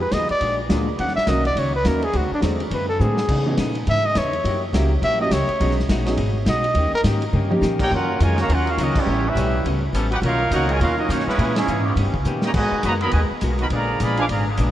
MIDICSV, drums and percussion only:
0, 0, Header, 1, 2, 480
1, 0, Start_track
1, 0, Tempo, 289157
1, 1632, Time_signature, 4, 2, 24, 8
1, 24419, End_track
2, 0, Start_track
2, 0, Title_t, "Drums"
2, 190, Note_on_c, 9, 38, 76
2, 190, Note_on_c, 9, 44, 55
2, 190, Note_on_c, 9, 51, 72
2, 356, Note_off_c, 9, 38, 0
2, 356, Note_off_c, 9, 44, 0
2, 356, Note_off_c, 9, 51, 0
2, 481, Note_on_c, 9, 51, 54
2, 647, Note_off_c, 9, 51, 0
2, 675, Note_on_c, 9, 51, 65
2, 841, Note_off_c, 9, 51, 0
2, 1157, Note_on_c, 9, 38, 75
2, 1157, Note_on_c, 9, 44, 56
2, 1157, Note_on_c, 9, 51, 74
2, 1323, Note_off_c, 9, 38, 0
2, 1323, Note_off_c, 9, 44, 0
2, 1323, Note_off_c, 9, 51, 0
2, 1638, Note_on_c, 9, 51, 67
2, 1792, Note_on_c, 9, 38, 28
2, 1804, Note_off_c, 9, 51, 0
2, 1952, Note_off_c, 9, 38, 0
2, 1952, Note_on_c, 9, 38, 52
2, 2106, Note_off_c, 9, 38, 0
2, 2106, Note_on_c, 9, 38, 76
2, 2106, Note_on_c, 9, 44, 54
2, 2106, Note_on_c, 9, 51, 79
2, 2272, Note_off_c, 9, 38, 0
2, 2272, Note_off_c, 9, 44, 0
2, 2272, Note_off_c, 9, 51, 0
2, 2407, Note_on_c, 9, 51, 53
2, 2573, Note_off_c, 9, 51, 0
2, 2601, Note_on_c, 9, 51, 73
2, 2767, Note_off_c, 9, 51, 0
2, 3065, Note_on_c, 9, 38, 73
2, 3065, Note_on_c, 9, 44, 52
2, 3065, Note_on_c, 9, 51, 72
2, 3231, Note_off_c, 9, 38, 0
2, 3231, Note_off_c, 9, 44, 0
2, 3231, Note_off_c, 9, 51, 0
2, 3359, Note_on_c, 9, 51, 51
2, 3525, Note_off_c, 9, 51, 0
2, 3541, Note_on_c, 9, 51, 69
2, 3707, Note_off_c, 9, 51, 0
2, 4021, Note_on_c, 9, 38, 80
2, 4021, Note_on_c, 9, 44, 54
2, 4021, Note_on_c, 9, 51, 82
2, 4187, Note_off_c, 9, 38, 0
2, 4187, Note_off_c, 9, 44, 0
2, 4187, Note_off_c, 9, 51, 0
2, 4317, Note_on_c, 9, 51, 51
2, 4483, Note_off_c, 9, 51, 0
2, 4502, Note_on_c, 9, 51, 74
2, 4668, Note_off_c, 9, 51, 0
2, 4982, Note_on_c, 9, 44, 62
2, 5148, Note_off_c, 9, 44, 0
2, 5267, Note_on_c, 9, 38, 75
2, 5433, Note_off_c, 9, 38, 0
2, 5456, Note_on_c, 9, 36, 82
2, 5456, Note_on_c, 9, 49, 94
2, 5622, Note_off_c, 9, 36, 0
2, 5622, Note_off_c, 9, 49, 0
2, 5933, Note_on_c, 9, 38, 81
2, 5933, Note_on_c, 9, 44, 59
2, 5933, Note_on_c, 9, 51, 80
2, 6099, Note_off_c, 9, 38, 0
2, 6099, Note_off_c, 9, 44, 0
2, 6099, Note_off_c, 9, 51, 0
2, 6226, Note_on_c, 9, 51, 57
2, 6392, Note_off_c, 9, 51, 0
2, 6420, Note_on_c, 9, 51, 70
2, 6586, Note_off_c, 9, 51, 0
2, 6892, Note_on_c, 9, 38, 79
2, 6892, Note_on_c, 9, 44, 60
2, 6892, Note_on_c, 9, 51, 76
2, 7058, Note_off_c, 9, 38, 0
2, 7058, Note_off_c, 9, 44, 0
2, 7058, Note_off_c, 9, 51, 0
2, 7190, Note_on_c, 9, 51, 49
2, 7356, Note_off_c, 9, 51, 0
2, 7389, Note_on_c, 9, 51, 75
2, 7555, Note_off_c, 9, 51, 0
2, 7869, Note_on_c, 9, 38, 83
2, 7869, Note_on_c, 9, 44, 65
2, 7869, Note_on_c, 9, 51, 83
2, 8035, Note_off_c, 9, 38, 0
2, 8035, Note_off_c, 9, 44, 0
2, 8035, Note_off_c, 9, 51, 0
2, 8343, Note_on_c, 9, 51, 77
2, 8509, Note_off_c, 9, 51, 0
2, 8819, Note_on_c, 9, 38, 81
2, 8819, Note_on_c, 9, 44, 66
2, 8819, Note_on_c, 9, 51, 81
2, 8985, Note_off_c, 9, 38, 0
2, 8985, Note_off_c, 9, 44, 0
2, 8985, Note_off_c, 9, 51, 0
2, 9107, Note_on_c, 9, 51, 53
2, 9273, Note_off_c, 9, 51, 0
2, 9304, Note_on_c, 9, 51, 74
2, 9470, Note_off_c, 9, 51, 0
2, 9474, Note_on_c, 9, 38, 32
2, 9622, Note_off_c, 9, 38, 0
2, 9622, Note_on_c, 9, 38, 53
2, 9781, Note_off_c, 9, 38, 0
2, 9781, Note_on_c, 9, 38, 80
2, 9781, Note_on_c, 9, 44, 57
2, 9781, Note_on_c, 9, 51, 79
2, 9947, Note_off_c, 9, 38, 0
2, 9947, Note_off_c, 9, 44, 0
2, 9947, Note_off_c, 9, 51, 0
2, 10066, Note_on_c, 9, 38, 65
2, 10066, Note_on_c, 9, 51, 57
2, 10232, Note_off_c, 9, 38, 0
2, 10232, Note_off_c, 9, 51, 0
2, 10248, Note_on_c, 9, 51, 73
2, 10414, Note_off_c, 9, 51, 0
2, 10727, Note_on_c, 9, 38, 86
2, 10727, Note_on_c, 9, 44, 55
2, 10727, Note_on_c, 9, 51, 79
2, 10893, Note_off_c, 9, 38, 0
2, 10893, Note_off_c, 9, 44, 0
2, 10893, Note_off_c, 9, 51, 0
2, 11022, Note_on_c, 9, 51, 56
2, 11188, Note_off_c, 9, 51, 0
2, 11199, Note_on_c, 9, 51, 72
2, 11365, Note_off_c, 9, 51, 0
2, 11688, Note_on_c, 9, 38, 87
2, 11688, Note_on_c, 9, 44, 71
2, 11688, Note_on_c, 9, 51, 85
2, 11854, Note_off_c, 9, 38, 0
2, 11854, Note_off_c, 9, 44, 0
2, 11854, Note_off_c, 9, 51, 0
2, 11982, Note_on_c, 9, 51, 57
2, 12148, Note_off_c, 9, 51, 0
2, 12178, Note_on_c, 9, 47, 63
2, 12344, Note_off_c, 9, 47, 0
2, 12474, Note_on_c, 9, 48, 85
2, 12640, Note_off_c, 9, 48, 0
2, 12657, Note_on_c, 9, 38, 62
2, 12657, Note_on_c, 9, 44, 65
2, 12823, Note_off_c, 9, 38, 0
2, 12823, Note_off_c, 9, 44, 0
2, 12939, Note_on_c, 9, 36, 81
2, 12942, Note_on_c, 9, 49, 92
2, 13105, Note_off_c, 9, 36, 0
2, 13108, Note_off_c, 9, 49, 0
2, 13617, Note_on_c, 9, 44, 64
2, 13617, Note_on_c, 9, 51, 78
2, 13783, Note_off_c, 9, 44, 0
2, 13783, Note_off_c, 9, 51, 0
2, 13907, Note_on_c, 9, 38, 54
2, 13907, Note_on_c, 9, 51, 56
2, 14073, Note_off_c, 9, 38, 0
2, 14073, Note_off_c, 9, 51, 0
2, 14102, Note_on_c, 9, 51, 75
2, 14268, Note_off_c, 9, 51, 0
2, 14393, Note_on_c, 9, 51, 54
2, 14559, Note_off_c, 9, 51, 0
2, 14579, Note_on_c, 9, 44, 57
2, 14579, Note_on_c, 9, 51, 77
2, 14745, Note_off_c, 9, 44, 0
2, 14745, Note_off_c, 9, 51, 0
2, 14866, Note_on_c, 9, 36, 96
2, 14868, Note_on_c, 9, 49, 83
2, 15032, Note_off_c, 9, 36, 0
2, 15034, Note_off_c, 9, 49, 0
2, 15552, Note_on_c, 9, 44, 66
2, 15552, Note_on_c, 9, 51, 86
2, 15718, Note_off_c, 9, 44, 0
2, 15718, Note_off_c, 9, 51, 0
2, 16029, Note_on_c, 9, 51, 70
2, 16195, Note_off_c, 9, 51, 0
2, 16507, Note_on_c, 9, 44, 58
2, 16507, Note_on_c, 9, 51, 79
2, 16673, Note_off_c, 9, 44, 0
2, 16673, Note_off_c, 9, 51, 0
2, 16795, Note_on_c, 9, 51, 56
2, 16961, Note_off_c, 9, 51, 0
2, 16985, Note_on_c, 9, 51, 74
2, 17151, Note_off_c, 9, 51, 0
2, 17453, Note_on_c, 9, 44, 56
2, 17453, Note_on_c, 9, 51, 89
2, 17619, Note_off_c, 9, 44, 0
2, 17619, Note_off_c, 9, 51, 0
2, 17742, Note_on_c, 9, 51, 56
2, 17908, Note_off_c, 9, 51, 0
2, 17943, Note_on_c, 9, 51, 78
2, 18109, Note_off_c, 9, 51, 0
2, 18427, Note_on_c, 9, 44, 68
2, 18427, Note_on_c, 9, 51, 78
2, 18587, Note_on_c, 9, 38, 33
2, 18593, Note_off_c, 9, 44, 0
2, 18593, Note_off_c, 9, 51, 0
2, 18751, Note_off_c, 9, 38, 0
2, 18751, Note_on_c, 9, 38, 54
2, 18906, Note_on_c, 9, 51, 74
2, 18917, Note_off_c, 9, 38, 0
2, 19072, Note_off_c, 9, 51, 0
2, 19193, Note_on_c, 9, 38, 95
2, 19193, Note_on_c, 9, 51, 79
2, 19359, Note_off_c, 9, 38, 0
2, 19359, Note_off_c, 9, 51, 0
2, 19383, Note_on_c, 9, 44, 57
2, 19549, Note_off_c, 9, 44, 0
2, 19868, Note_on_c, 9, 51, 73
2, 20034, Note_off_c, 9, 51, 0
2, 20147, Note_on_c, 9, 36, 66
2, 20313, Note_off_c, 9, 36, 0
2, 20329, Note_on_c, 9, 44, 61
2, 20495, Note_off_c, 9, 44, 0
2, 20612, Note_on_c, 9, 38, 75
2, 20778, Note_off_c, 9, 38, 0
2, 20812, Note_on_c, 9, 49, 93
2, 20817, Note_on_c, 9, 36, 85
2, 20978, Note_off_c, 9, 49, 0
2, 20983, Note_off_c, 9, 36, 0
2, 21296, Note_on_c, 9, 44, 61
2, 21296, Note_on_c, 9, 51, 84
2, 21462, Note_off_c, 9, 44, 0
2, 21462, Note_off_c, 9, 51, 0
2, 21590, Note_on_c, 9, 51, 54
2, 21756, Note_off_c, 9, 51, 0
2, 21770, Note_on_c, 9, 51, 73
2, 21936, Note_off_c, 9, 51, 0
2, 22260, Note_on_c, 9, 44, 59
2, 22260, Note_on_c, 9, 51, 76
2, 22426, Note_off_c, 9, 44, 0
2, 22426, Note_off_c, 9, 51, 0
2, 22554, Note_on_c, 9, 51, 51
2, 22720, Note_off_c, 9, 51, 0
2, 22745, Note_on_c, 9, 51, 66
2, 22911, Note_off_c, 9, 51, 0
2, 23237, Note_on_c, 9, 44, 69
2, 23237, Note_on_c, 9, 51, 79
2, 23403, Note_off_c, 9, 44, 0
2, 23403, Note_off_c, 9, 51, 0
2, 23528, Note_on_c, 9, 51, 55
2, 23694, Note_off_c, 9, 51, 0
2, 23721, Note_on_c, 9, 51, 83
2, 23887, Note_off_c, 9, 51, 0
2, 24192, Note_on_c, 9, 44, 57
2, 24192, Note_on_c, 9, 51, 78
2, 24358, Note_off_c, 9, 44, 0
2, 24358, Note_off_c, 9, 51, 0
2, 24419, End_track
0, 0, End_of_file